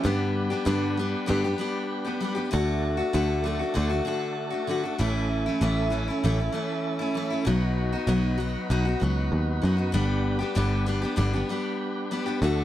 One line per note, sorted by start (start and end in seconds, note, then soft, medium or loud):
0.01 0.50 G2 medium
0.01 0.53 G2 loud
0.01 0.51 D3 medium
0.01 0.51 G3 medium
0.01 0.05 B4 medium
0.01 0.11 C5 medium
0.06 0.51 B3 medium
0.06 2.50 B3 medium
0.06 0.50 D4 medium
0.06 2.50 D4 medium
0.06 2.50 G4 medium
0.06 0.49 G4 medium
0.06 2.50 B4 medium
0.50 0.65 G3 soft
0.50 0.66 B3 medium
0.50 0.66 D4 medium
0.50 0.66 G4 medium
0.65 0.97 G2 medium
0.65 1.14 G2 medium
0.65 0.97 D3 medium
0.65 0.96 G3 loud
0.65 0.98 B3 medium
0.65 0.98 D4 loud
0.65 0.98 G4 medium
0.97 1.26 G3 medium
0.97 1.26 B3 medium
0.97 1.27 D4 medium
0.97 1.27 G4 medium
1.26 1.43 G2 medium
1.26 1.53 G2 medium
1.26 1.43 D3 medium
1.26 1.43 G3 medium
1.26 1.43 B3 medium
1.26 1.44 D4 medium
1.26 1.43 G4 medium
1.44 1.57 G3 soft
1.44 1.58 B3 medium
1.44 1.59 D4 medium
1.44 1.59 G4 medium
1.58 2.05 G3 medium
1.58 2.05 B3 medium
1.58 2.04 D4 medium
1.58 2.03 G4 medium
2.04 2.19 G3 medium
2.04 2.21 B3 medium
2.04 2.21 D4 medium
2.04 2.20 G4 medium
2.20 2.36 G3 medium
2.20 2.36 B3 medium
2.20 2.35 D4 medium
2.20 2.33 G4 medium
2.35 2.50 G3 soft
2.35 2.51 B3 soft
2.35 2.52 D4 medium
2.35 2.51 G4 medium
2.51 3.01 D2 loud
2.51 2.98 D3 medium
2.51 2.98 A3 medium
2.51 4.96 A3 medium
2.51 2.98 D4 medium
2.51 4.97 D4 medium
2.51 2.96 F#4 medium
2.51 4.97 F#4 medium
2.51 4.97 A4 medium
2.97 3.13 A3 soft
2.97 3.13 D4 medium
2.97 3.13 F#4 medium
3.13 3.62 D2 medium
3.13 3.43 D3 medium
3.13 3.44 A3 medium
3.13 3.45 D4 loud
3.13 3.45 F#4 loud
3.44 3.59 D3 medium
3.44 3.60 A3 medium
3.44 3.60 D4 medium
3.44 3.58 F#4 medium
3.59 3.74 A3 soft
3.59 3.74 D4 soft
3.59 3.75 F#4 medium
3.74 4.00 D2 loud
3.74 3.90 D3 medium
3.74 3.91 A3 medium
3.74 3.90 D4 medium
3.74 3.88 F#4 medium
3.89 4.04 A3 soft
3.89 4.06 D4 medium
3.89 4.05 F#4 medium
4.05 4.52 D3 medium
4.05 4.52 A3 medium
4.05 4.51 D4 medium
4.05 4.49 F#4 medium
4.50 4.67 A3 medium
4.50 4.68 D4 medium
4.50 4.67 F#4 medium
4.67 4.83 D3 medium
4.67 4.84 A3 medium
4.67 4.84 D4 medium
4.67 4.82 F#4 medium
4.83 4.98 A3 soft
4.83 5.00 D4 medium
4.83 4.99 F#4 medium
4.98 5.47 A1 loud
4.98 5.45 A2 medium
4.98 5.45 E3 medium
4.98 5.45 A3 medium
4.98 7.45 A3 medium
4.98 5.46 C#4 medium
4.98 7.45 C#4 medium
4.98 5.45 E4 medium
4.98 7.46 E4 medium
4.98 7.45 A4 medium
5.46 5.61 A3 soft
5.46 5.62 C#4 medium
5.46 5.61 E4 medium
5.61 6.09 A1 medium
5.61 5.92 A2 medium
5.61 5.89 E3 loud
5.61 5.90 A3 loud
5.61 5.91 C#4 loud
5.61 5.92 E4 loud
5.90 6.06 E3 medium
5.90 6.07 A3 medium
5.90 6.07 C#4 medium
5.90 6.07 E4 medium
6.08 6.23 A3 soft
6.08 6.24 C#4 medium
6.08 6.23 E4 medium
6.24 6.47 A1 medium
6.24 6.38 A2 medium
6.24 6.39 E3 medium
6.24 6.39 A3 medium
6.24 6.39 C#4 medium
6.24 6.37 E4 medium
6.38 6.52 A3 soft
6.38 6.53 C#4 medium
6.38 6.54 E4 medium
6.52 6.99 E3 medium
6.52 7.00 A3 medium
6.52 7.00 C#4 medium
6.52 6.98 E4 medium
6.99 7.14 A3 soft
6.99 7.16 C#4 medium
6.99 7.15 E4 medium
7.14 7.30 E3 medium
7.14 7.31 A3 medium
7.14 7.31 C#4 medium
7.14 7.29 E4 medium
7.30 7.46 A3 soft
7.30 7.47 C#4 soft
7.30 7.46 E4 medium
7.45 7.95 B1 loud
7.45 7.92 B2 medium
7.45 7.93 F#3 medium
7.45 7.93 B3 medium
7.45 9.92 B3 medium
7.45 9.92 D#4 medium
7.45 7.92 D#4 medium
7.45 9.92 F#4 medium
7.45 7.91 F#4 loud
7.45 9.92 B4 medium
7.92 8.07 B3 soft
7.92 8.07 D#4 medium
7.92 8.07 F#4 medium
8.07 8.55 B1 loud
8.07 8.39 B2 medium
8.07 8.36 F#3 loud
8.07 8.37 B3 medium
8.07 8.39 D#4 loud
8.07 8.39 F#4 loud
8.38 8.69 F#3 medium
8.38 8.70 B3 medium
8.38 8.70 D#4 medium
8.38 8.70 F#4 medium
8.70 8.94 B1 medium
8.70 8.86 B2 medium
8.70 8.86 F#3 medium
8.70 8.86 B3 medium
8.70 8.86 D#4 medium
8.70 8.84 F#4 medium
8.85 9.00 B3 soft
8.85 9.01 D#4 medium
8.85 9.01 F#4 medium
9.00 9.30 C#2 medium
9.00 9.60 F#3 medium
9.00 9.62 B3 medium
9.00 9.64 D#4 medium
9.00 9.64 F#4 medium
9.32 9.60 D#2 medium
9.62 9.91 F#2 medium
9.62 9.78 F#3 medium
9.62 9.78 B3 medium
9.62 9.77 D#4 medium
9.62 9.76 F#4 medium
9.77 9.93 B3 soft
9.77 9.94 D#4 medium
9.77 9.93 F#4 medium
9.92 10.42 G1 loud
9.92 10.40 G2 medium
9.92 10.40 D3 medium
9.92 10.40 G3 medium
9.92 10.40 B3 medium
9.92 12.40 B3 medium
9.92 10.39 D4 loud
9.92 12.40 D4 medium
9.92 10.38 G4 medium
9.92 12.40 G4 medium
9.92 12.41 B4 medium
10.39 10.55 G3 medium
10.39 10.55 B3 medium
10.39 10.56 D4 medium
10.39 10.55 G4 medium
10.55 11.04 G1 loud
10.55 10.86 G2 medium
10.55 10.87 D3 medium
10.55 10.85 G3 loud
10.55 10.85 B3 medium
10.55 10.87 D4 loud
10.55 10.88 G4 medium
10.86 11.02 G3 medium
10.86 11.02 B3 medium
10.86 11.02 D4 medium
10.86 11.00 G4 medium
11.02 11.16 G3 soft
11.02 11.17 B3 medium
11.02 11.16 D4 medium
11.02 11.17 G4 medium
11.16 11.42 G1 medium
11.16 11.33 G2 medium
11.16 11.33 D3 medium
11.16 11.33 G3 medium
11.16 11.33 B3 medium
11.16 11.33 D4 medium
11.16 11.32 G4 medium
11.33 11.48 G3 soft
11.33 11.49 B3 soft
11.33 11.49 D4 medium
11.33 11.49 G4 medium
11.49 12.10 G3 medium
11.49 12.10 B3 medium
11.49 12.11 D4 medium
11.49 12.12 G4 medium
12.11 12.27 G3 medium
12.11 12.26 B3 medium
12.11 12.25 D4 medium
12.11 12.24 G4 medium
12.26 12.41 G3 soft
12.26 12.42 B3 medium
12.26 12.42 D4 medium
12.26 12.42 G4 medium
12.42 12.64 D2 loud
12.42 12.64 D3 medium
12.42 12.64 A3 medium
12.42 12.64 D4 medium
12.42 12.64 F#4 medium
12.42 12.64 A4 medium